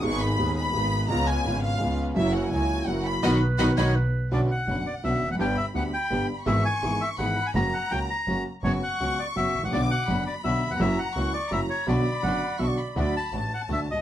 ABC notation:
X:1
M:3/4
L:1/16
Q:1/4=167
K:B
V:1 name="Violin section"
c'2 b4 b6 | a2 g4 ^e4 z2 | e2 f2 g4 f2 b2 | [dfb]2 z2 [dfb]2 [dfb]2 z4 |
[K:Bm] f12 | b4 b8 | c'8 b4 | ^a8- a2 z2 |
c'12 | d'4 b8 | ^a4 c'4 a4 | b8 c'2 b2 |
[K:D] b4 a8 |]
V:2 name="Bandoneon"
z12 | z12 | z12 | z12 |
[K:Bm] d2 f4 d2 e3 f | g2 e2 f2 g4 z2 | e2 ^g4 e2 f3 g | ^a2 f2 g2 a4 z2 |
c2 f4 d2 e3 f | d2 f4 d2 e3 f | e2 f4 d2 e2 c2 | d8 z4 |
[K:D] d2 a4 f2 e2 _e2 |]
V:3 name="Clarinet"
z12 | z12 | z12 | z2 B4 c2 B4 |
[K:Bm] z12 | z12 | z12 | z12 |
z12 | z12 | z12 | z4 f4 e d3 |
[K:D] z12 |]
V:4 name="String section"
[DGB]4 [DGB]4 [DGB]4 | [C^EB]4 [CEB]4 [CEB]4 | [EFA]4 [EFA]4 [EFA]4 | [DFB]2 z2 [DFB]2 [DFB]2 z4 |
[K:Bm] [CDB]2 z2 [CDB]2 z2 [CDB]2 z2 | [B,DG]2 z2 [B,DG]2 z2 [B,DG]2 z2 | [B,E^G]2 z2 [B,EG]2 z2 [B,EG]2 z2 | [^A,CF]2 z2 [A,CF]2 z2 [A,CF]2 z2 |
[B,CF]2 z2 [B,CF]2 z2 [B,CF]2 z2 | [B,DF]2 z2 [B,DF]2 z2 [B,DF]2 z2 | [^A,EF]2 z2 [A,EF]2 z2 [A,EF]2 z2 | [B,DF]2 z2 [B,DF]2 z2 [B,DF]2 z2 |
[K:D] [A,DF]2 z2 [A,DF]2 z2 [A,DF]2 z2 |]
V:5 name="Grand piano" clef=bass
[G,,,G,,D,G,B,G]4 [D,,,D,,D,G,B,G]4 [G,,,G,,D,G,B,G]4 | [C,,C,G,B,^E]4 [G,,,G,,C,G,B,E]4 [C,,C,G,B,E]4 | [F,,C,F,A,E]4 [C,,C,F,A,E]4 [F,,C,F,A,E]4 | [D,F,B,]2 z2 [D,F,B,]2 [D,F,B,]2 z4 |
[K:Bm] [B,,,B,,D,B,CF]2 z2 [F,,,F,,D,B,CF]2 z2 [B,,,B,,D,B,CF]2 z/2 E,,/2 ^E,,/2 F,,/2 | [G,,,G,,D,G,B,G]2 z2 [D,,D,G,B,G]2 z2 [G,,,G,,D,G,B,G]2 z2 | [^G,,,^G,,E,^G,B,^G]2 z2 [G,,,G,,E,G,B,G]2 z2 [G,,,G,,E,G,B,G]2 z2 | [F,,C,F,^A,F]2 z2 [C,,C,F,A,F]2 z2 [F,,C,F,A,F]2 z2 |
[F,,C,F,B,F]2 z2 [C,,C,F,B,F]2 z2 [F,,C,F,B,F]2 z/2 ^G,,,/2 A,,,/2 ^A,,,/2 | [B,,,B,,D,F,B,F]2 z2 [F,,,F,,D,F,B,F]2 z2 [B,,,B,,D,F,B,F]2 z/2 ^D,,/2 E,,/2 ^E,,/2 | [F,,C,F,^A,E]2 z2 [C,,C,F,A,E]2 z2 [F,,C,F,A,E]2 z2 | [B,,,B,,D,F,B,F]2 z2 [F,,,F,,D,F,B,F]2 z2 [B,,,B,,D,F,B,F]2 z2 |
[K:D] [D,,D,F,A,F]2 z2 [A,,,A,,]2 z2 [D,,D,]2 z/2 =C,,/2 ^C,,/2 z/2 |]
V:6 name="Double bass" clef=bass
G,,,4 D,,4 G,,,4 | C,,4 G,,,4 C,,4 | F,,,4 C,,4 F,,,4 | B,,,2 z2 B,,,2 B,,,2 z4 |
[K:Bm] B,,,2 z2 F,,,2 z2 B,,,2 ^E,,,2 | G,,,2 z2 D,,2 z2 G,,,2 z2 | ^G,,,2 z2 G,,,2 z2 G,,,2 z2 | F,,,2 z2 C,,2 z2 F,,,2 z2 |
F,,,2 z2 C,,2 z2 F,,,2 A,,,2 | B,,,2 z2 F,,,2 z2 B,,,2 z2 | F,,,2 z2 C,,2 z2 F,,,2 z2 | B,,,2 z2 F,,,2 z2 B,,,2 z2 |
[K:D] D,,2 z2 A,,,2 z2 D,,2 C,,2 |]